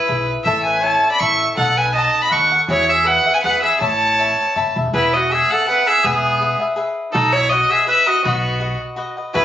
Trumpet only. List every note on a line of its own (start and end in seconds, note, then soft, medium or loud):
0.00 0.29 E4 medium
0.45 0.64 A4 medium
0.66 0.82 B4 medium
0.81 1.09 C#5 medium
1.09 1.22 D5 medium
1.20 1.49 E5 medium
1.56 1.78 A4 medium
1.77 1.93 B4 medium
1.93 2.23 D#5 medium
2.23 2.32 D#5 medium
2.30 2.60 F#5 medium
2.69 2.91 E4 medium
2.89 3.07 G#4 medium
3.05 3.35 B4 medium
3.35 3.43 B4 medium
3.44 3.62 B4 medium
3.63 3.79 G#4 medium
3.81 4.72 C#5 medium
4.94 5.17 E4 medium
5.15 5.34 F#4 medium
5.33 5.53 G#4 medium
5.52 5.67 A4 medium
5.68 5.89 B4 medium
5.87 6.06 G#4 medium
6.05 6.61 B3 medium
7.13 7.34 D#4 medium
7.33 7.52 E4 medium
7.51 7.72 F#4 medium
7.70 7.87 G#4 medium
7.88 8.08 B4 medium
8.07 8.23 F#4 medium
8.23 8.76 B3 medium
9.34 9.45 E4 medium